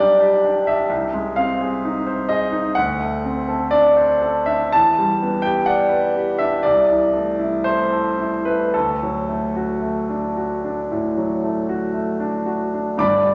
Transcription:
grand piano
Already playing: B1 G3 G4 D5 G5
0.00 D4
0.21 G4
0.44 D4
0.67 G4 E5
0.90 C2
1.13 G#3
1.36 C4 F5
1.60 G#4
1.85 D#4
2.07 C5
2.29 G#4 D#5
2.52 D#4
2.75 D2 F#5
3.00 A3
3.24 C4
3.49 A4
3.71 D4 D5
3.97 C5
4.22 A4
4.46 D4 E5
4.72 E2 A5
4.99 G3
5.22 B3
5.42 G4 G5
5.66 D5 F#5
5.89 B4
6.16 G4
6.38 D4 E5
6.63 C2 D5
6.91 E3
7.13 A3
7.39 E4
7.64 A3 C5
7.92 A4
8.18 E4
8.45 A3 B4
8.74 D2 A4
9.03 F#3
9.28 A3
9.56 F#4
9.82 A3
10.10 D4
10.37 F#4
10.64 D4
10.92 A2
11.18 F#3
11.44 A3
11.69 F#4
11.93 A3
12.20 D4
12.46 F#4
12.74 D4
12.97 G1 G2 D5 B5 D6

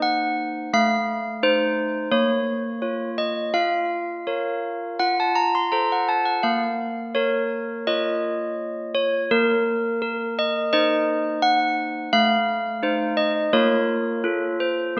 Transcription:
handbells
Already playing: A#3 D#4 C5
0.02 F#5
0.73 A3 F5
1.43 D#4 C5
2.12 A#3 C#5
2.82 F4 C#5
3.18 D#5
3.54 F4 F5
4.27 A#4 C#5
4.99 F4 F#5
5.20 A5
5.35 A#5
5.55 C6
5.72 A4 C5 A#5
5.92 F#5
6.09 A5
6.26 F#5
6.43 A#3 F5
7.15 A#4 C#5
7.87 F4 C#5 D#5
8.95 C#5
9.31 A#3 A#4
10.02 A#4
10.39 D#5
10.73 D#4 C5 D#5
11.42 F#5
12.13 A3 F5
12.83 D#4 C5
13.17 D#5
13.53 A#3 F4 A#4 C#5
14.24 F4 A4
14.60 C5

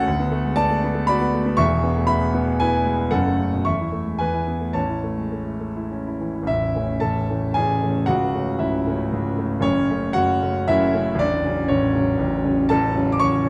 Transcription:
grand piano
Already playing: A4 F#5
0.07 D2
0.20 B3
0.32 A3
0.45 G#3
0.56 B3 D5 A5
0.70 A3
0.84 B3
0.94 A3
1.07 F#4 D5 B5
1.21 B3
1.34 A3
1.46 B3
1.57 E1 E2 E5 C#6
1.70 G#4
1.83 B3
1.97 A3
2.07 B3 E5 B5
2.21 G#4
2.34 B3
2.47 G#4
2.60 E4 B4 G#5
2.74 G#4
2.85 G#3
2.99 G#4
3.11 F#1 F#2 A4 F#5
3.26 A3
3.38 C#3
3.53 B2
3.65 E2 E5 C#6
3.80 E4
3.92 A3
4.07 G#3
4.19 E2 B4 G#5
4.33 E4
4.47 B3
4.61 A3
4.73 A1 C#5 A5
4.89 E4
5.04 A3
5.18 G#3
5.32 A3
5.46 E4
5.60 A3
5.76 E4
5.91 C#4
6.07 E4
6.20 E3
6.35 E4
6.43 A1
6.47 A0 E4 E5
6.76 E3 A3 C#4
7.00 A0 A1 A4 A5
7.30 E3 A3 C#4
7.54 A0 A1 G#4 G#5
7.82 E3 A3 C#4
8.06 C#1 C#2 F#4 F#5
8.34 C#3 A3 C#4
8.59 C#1 C#2 E4 E5
8.87 C#3 A3 C#4
9.12 C#1 C#2
9.37 C#3 A3 C#4
9.60 F#1 F#2 C#4 C#5
9.90 C#3 A3 C#4
10.13 F#1 F#2 F#4 F#5
10.42 C#3 A3 C#4
10.68 F#1 F#2 E4 E5
10.93 C#3 A3 C#4
11.14 A0 A1
11.19 D4 D5
11.45 C#3 F#3 C#4
11.68 A0 A1 C#4 C#5
11.95 C#3 F#3 C#4
12.19 A0 A1
12.44 C#3 F#3 C#4
12.69 A0 A1 A4 A5
12.96 C#3 F#3 C#4
13.12 D6
13.20 A0 A1 C#5 C#6
13.44 C#3 F#3 C#4

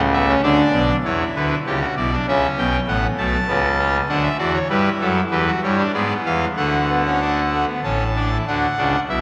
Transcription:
pipe organ
Already playing: C#2 C#3
0.13 B3 E5
0.28 C#4
0.43 D2 D3 D4 D5
0.72 B1 B2
1.04 E2 E3 E4 C#5
1.35 D2 D3 B4
1.66 C#2 C#3 G4 C#5
1.81 F#4
1.97 B1 B2 E4 D5
2.13 D4
2.27 C#2 C#3 C#4 E5
2.58 B1 B2 G5
2.87 A1 A2 B3 F#5
3.18 B1 B2 A3 A5
3.48 C#2 C#3 B3
3.78 C#4
4.09 D2 D3 D4 F#5
4.22 E5
4.39 E2 E3 F#4 D5
4.53 C#5
4.69 G2 G3 E4 B4
5.00 F#2 F#3 A4
5.30 E2 E3 G4 B4
5.47 F#4
5.62 G2 G3 E4 C#5
5.77 D4
5.94 G#2 G#3 B3 D5
6.25 E2 E3 F5
6.56 D2 D3 A3 F#5
6.90 B3
7.06 C#4
7.21 D4
7.52 A3
7.67 B3
7.84 A1 A2 C#4 A5
8.16 D4
8.32 E4
8.47 D2 D3 D4 F#5
8.77 C#2 C#3 D4
9.09 B1 B2 E4 E5

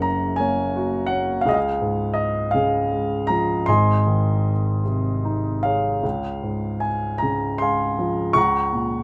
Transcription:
grand piano
Already playing: F#1 F#2 C#3 A#4 C#5 F#5
0.02 A#5
0.36 A#3 C#5 G#5
0.76 F#4
1.06 C#4 F#5
1.41 G#4 F5
1.46 C#2 D#5
1.54 G#4 F5
1.81 G#2
2.14 D#5
2.51 C#3 G#4 F5
2.92 G#3
3.27 F3 A#5
3.66 G#1 G#2 D#5 G#5 C6
4.07 D#3
4.85 C3
5.25 D#4
5.63 G#3 G#4 C#5 F5
6.03 C#2
6.43 G#2
6.80 G#5
7.18 A#5
7.22 C#3
7.58 G#3 F5 G#5 C6
7.99 F3
8.33 C#2 F#5 A#5 C#6
8.72 A#2

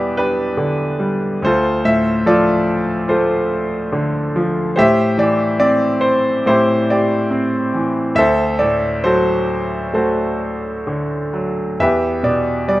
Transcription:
grand piano
Already playing: E2 B2 G3 B3 G4 B4 D5 E5
0.17 D4 G4 B4
0.57 D3
0.99 G3
1.42 D2 F4 A4 C5
1.85 A2 E5
2.26 F3 F4 A4 D5
3.08 A3 F4 A4 C5
3.92 D3
4.36 F3
4.76 A2 G4 C5 E5
5.18 E3 D5
5.60 C4 D5
6.01 C5
6.46 A2 E4 G4 C5
6.90 G4 D5
7.31 C4
7.74 E3
8.15 D2 A4 C5 E5
8.59 A2 D5
9.04 F#3 F#4 A4 C5
9.94 A3 F#4 A4 C5
10.87 D3
11.33 F#3
11.80 E2 G4 B4 E5
12.23 B2 D5
12.68 G3 D5

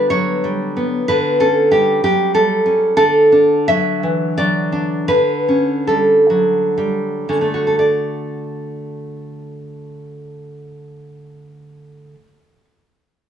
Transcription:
nylon-string guitar
Already playing: D3 G3 B3
0.10 F#3 C#5
0.44 G3
0.77 B3
1.08 D3 B4
1.40 C#4 A4
1.71 G3 G4
2.04 F#3 G4
2.35 G3 A4
2.66 C#4
2.97 D3 A4
3.32 D4
3.68 F#3 E5
4.03 E3
4.38 F#3 D5
4.72 D4
5.08 D3 B4
5.48 C#4
5.87 G3 A4
6.30 F#3
6.78 G3
7.29 D3 C#4
7.41 A3
7.54 F#4
7.67 A4
7.79 D5

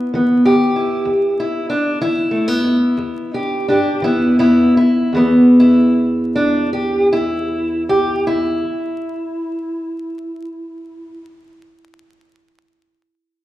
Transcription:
steel-string acoustic guitar
Already playing: B3 E4
0.14 E3 B3
0.45 G4
0.76 E4
1.05 E2
1.40 E4
1.70 D4
2.01 E3 E4
2.31 A3
2.48 B3
2.64 E4
2.97 E2
3.34 D4 G4
3.68 D4 G4
4.02 E3 B3 E4
4.39 B3 E4
4.77 E4
5.12 E2 E3
5.17 B3
5.60 E4
6.35 D4
6.73 G4
7.13 E4
7.89 G4
8.27 E4

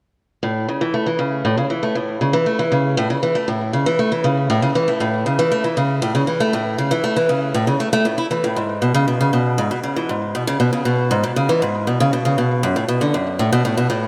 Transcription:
steel-string acoustic guitar
0.43 A2
0.69 C#3
0.81 E3
0.94 A3
1.06 E3
1.19 C#3
1.45 A2
1.57 C#3
1.70 E3
1.83 A3
1.95 A2
2.21 C#3
2.33 E3
2.46 A3
2.59 E3
2.72 C#3
2.97 A2
3.10 C#3
3.23 E3
3.35 A3
3.48 A2
3.73 C#3
3.86 E3
3.99 A3
4.12 E3
4.24 C#3
4.50 A2
4.62 C#3
4.75 E3
4.88 A3
5.00 A2
5.26 C#3
5.39 E3
5.52 A3
5.64 E3
5.77 C#3
6.02 A2
6.15 C#3
6.27 E3
6.40 A3
6.53 A2
6.78 C#3
6.91 E3
7.04 A3
7.16 E3
7.29 C#3
7.54 A2
7.67 C#3
7.80 A3
7.93 A3
8.05 A2
8.18 E4
8.31 E3
8.44 A2
8.56 G#2
8.82 B2
8.94 C#3
9.08 B2
9.21 C#3
9.33 B2
9.58 G#2
9.71 B2
9.83 C#3
9.96 E3
10.09 G#2
10.35 B2
10.47 C#3
10.60 B2
10.73 C#3
10.85 B2
11.11 G#2
11.24 B2
11.36 C#3
11.49 E3
11.62 G#2
11.87 B2
12.00 C#3
12.13 B2
12.25 C#3
12.38 B2
12.63 F#2
12.76 A2
12.88 B2
13.01 D3
13.14 F#2
13.39 A2
13.52 B2
13.65 A2
13.77 B2
13.90 A2

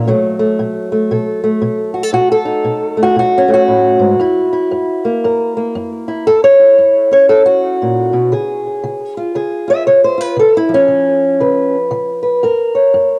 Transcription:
steel-string acoustic guitar
0.07 B2 F#3 A3
0.39 A3
0.59 B2
0.92 A3
1.11 B2 A4
1.44 A3
1.62 B2
1.94 F#4
2.03 A4
2.13 B2 F#4
2.32 A4
2.45 D#4
2.64 B2
2.97 A3
3.03 F#4
3.16 B2 F#4
3.38 C#4
3.48 A3
3.54 F#4
3.68 A2
3.99 G#2
4.19 F#2 E4
4.53 E4
4.71 F#2
5.05 A#3
5.24 F#2 A#4
5.57 A#3
5.75 F#2
6.08 E4
6.27 F#2 A4
6.44 C#5
6.60 E4
6.78 F#2
7.11 C#4 C#5
7.29 F#2 A4
7.46 F#4
7.82 A#2
8.13 B2
8.32 C#3 G#4
8.84 C#3
9.17 F4
9.35 C#3 G#4
9.68 F4 E5
9.87 C#3 C#5
10.04 C5
10.18 F4 B4
10.37 C#3 A4
10.57 E4
10.69 F3
10.74 C#4
10.88 C#3
11.40 C#3 B4
11.91 C#3
12.23 B4
12.43 F#2 A#4
12.75 C#5
12.94 F#2

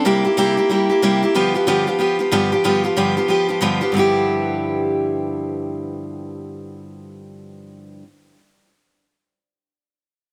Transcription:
steel-string acoustic guitar
0.05 C3 G3 A#3 E4 G4
0.24 A#3 E4 G4
0.37 C3 G3 A#3 E4 G4
0.57 A#3 E4 G4
0.69 G3 A#3 E4 G4
0.90 A#3 E4 G4
1.02 C3 G3 A#3 E4 G4
1.22 A#3 E4 G4
1.35 G2 D3 F3 B3 F4 G4
1.54 F3 B3 F4 G4
1.67 G2 D3 F3 B3 F4 G4
1.87 F3 B3 F4 G4
1.99 F3 B3 F4 G4
2.19 F3 B3 F4 G4
2.32 G2 D3 F3 B3 F4 G4
2.52 F3 B3 F4 G4
2.64 G2 D3 F3 B3 F4 G4
2.84 F3 B3 F4 G4
2.96 G2 D3 F3 B3 F4 G4
3.17 F3 B3 F4 G4
3.28 F3 B3 F4 G4
3.49 F3 B3 F4 G4
3.61 G2 D3 F3 B3 F4 G4
3.81 F3 B3 F4 G4
3.92 G2 D3 F3
3.97 B3 E4 G4

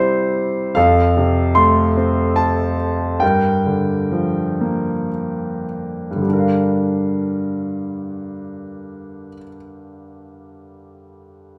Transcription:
grand piano
Already playing: C3 G3 E4 G4 C5 D5
0.75 F2 A4 F5
1.17 C3
1.55 A3 C6
1.97 C4
2.36 A5
3.20 G2 A#4 G5
3.66 D3
4.12 F3
4.61 A#3
6.11 G2
6.16 D3
6.22 G3
6.27 D4
6.33 A#4
6.39 F5

